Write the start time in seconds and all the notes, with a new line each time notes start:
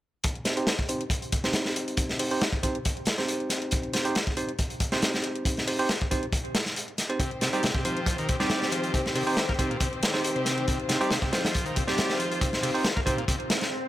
0.24 kick, closed hi-hat
0.35 closed hi-hat
0.45 C4 D#4 G4 C5, snare, closed hi-hat
0.57 C4 D#4 G4 C5, closed hi-hat
0.67 snare, closed hi-hat
0.79 kick, closed hi-hat
0.89 C4 D#4 G4 C5, closed hi-hat
1.01 closed hi-hat
1.10 kick, closed hi-hat
1.22 closed hi-hat
1.32 kick, closed hi-hat
1.44 C4 D#4 G4 C5, snare, closed hi-hat
1.53 snare, closed hi-hat
1.65 snare, closed hi-hat
1.76 closed hi-hat
1.88 closed hi-hat
1.97 kick, closed hi-hat
2.09 snare, closed hi-hat
2.19 C4 D#4 G4 C5, closed hi-hat, open hi-hat
2.31 C4 D#4 G4 C5, closed hi-hat
2.41 snare, closed hi-hat
2.53 kick, closed hi-hat
2.63 C4 D#4 G4 C5, kick, closed hi-hat
2.75 closed hi-hat
2.85 kick, closed hi-hat
2.97 closed hi-hat
3.05 snare, closed hi-hat
3.18 C4 D#4 G4 C5, snare, closed hi-hat
3.28 closed hi-hat
3.40 closed hi-hat
3.50 snare, closed hi-hat
3.62 closed hi-hat
3.71 kick, closed hi-hat
3.83 closed hi-hat
3.93 C4 D#4 G4 C5, snare, closed hi-hat
4.05 C4 D#4 G4 C5, closed hi-hat
4.15 snare, closed hi-hat
4.27 kick, closed hi-hat
4.37 C4 D#4 G4 C5, closed hi-hat
4.49 closed hi-hat
4.59 kick, closed hi-hat
4.70 closed hi-hat
4.80 kick, closed hi-hat
4.92 C4 D#4 G4 C5, snare, closed hi-hat
5.02 snare, closed hi-hat
5.14 snare, closed hi-hat
5.24 closed hi-hat
5.35 closed hi-hat
5.45 kick, closed hi-hat
5.57 snare, closed hi-hat
5.67 C4 D#4 G4 C5, closed hi-hat, open hi-hat
5.79 C4 D#4 G4 C5, closed hi-hat
5.89 snare, closed hi-hat
6.01 kick, closed hi-hat
6.11 C4 D#4 G4 C5, kick, closed hi-hat
6.23 closed hi-hat
6.33 kick, closed hi-hat
6.45 closed hi-hat
6.55 snare, closed hi-hat
6.66 snare, closed hi-hat
6.76 closed hi-hat
6.88 closed hi-hat
6.98 snare, closed hi-hat
7.09 C4 D#4 G4 C5, closed hi-hat
7.19 C3 D#3 C4 G4 C5, kick, closed hi-hat
7.31 closed hi-hat
7.41 C3 C4 D#4 G4 C5, snare, closed hi-hat
7.53 G3 C4 D#4 G4 C5, closed hi-hat
7.63 C3, snare, closed hi-hat
7.75 C3, kick, closed hi-hat
7.85 F3 C4 D#4 G4 C5, closed hi-hat
7.97 closed hi-hat
8.06 kick, closed hi-hat
8.18 D#3, closed hi-hat
8.29 C3, kick, closed hi-hat
8.40 G3 C4 D#4 G4 C5, snare, closed hi-hat
8.50 snare, closed hi-hat
8.62 snare, closed hi-hat
8.72 F3, closed hi-hat
8.83 closed hi-hat
8.94 C3, kick, closed hi-hat
9.06 snare, closed hi-hat
9.15 C3 C4 D#4 G4 C5, closed hi-hat, open hi-hat
9.27 C4 D#4 G4 C5, closed hi-hat
9.37 snare, closed hi-hat
9.48 A#3, kick, closed hi-hat
9.59 C3 C4 D#4 G4 C5, kick, closed hi-hat
9.70 A#2, closed hi-hat
9.80 C3, kick, closed hi-hat
9.93 closed hi-hat
10.03 snare, closed hi-hat
10.14 C4 D#4 G4 C5, snare, closed hi-hat
10.24 closed hi-hat
10.36 C3, closed hi-hat
10.45 snare, closed hi-hat
10.58 closed hi-hat
10.67 C3 F4, kick, closed hi-hat
10.80 closed hi-hat
10.89 C3 C4 D#4 G4 C5, snare, closed hi-hat
11.01 G3 C4 D#4 G4 C5, closed hi-hat
11.10 C3, snare, closed hi-hat
11.22 C3, kick, closed hi-hat
11.32 F3 C4 D#4 G4 C5, snare, closed hi-hat
11.45 snare, closed hi-hat
11.55 kick, closed hi-hat
11.66 D#3, closed hi-hat
11.76 C3, kick, closed hi-hat
11.87 G3 C4 D#4 G4 C5, snare, closed hi-hat
11.98 snare, closed hi-hat
12.10 snare, closed hi-hat
12.19 F3, closed hi-hat
12.32 closed hi-hat
12.41 C3, kick, closed hi-hat
12.53 snare, closed hi-hat
12.62 C3 C4 D#4 G4 C5, closed hi-hat, open hi-hat
12.74 C4 D#4 G4 C5, closed hi-hat
12.84 snare, closed hi-hat
12.96 A#3, kick, closed hi-hat
13.06 C3 C4 D#4 G4 C5, kick, closed hi-hat
13.18 A#2, closed hi-hat
13.28 C3, kick, closed hi-hat, swell
13.40 closed hi-hat
13.50 snare, closed hi-hat
13.61 snare, closed hi-hat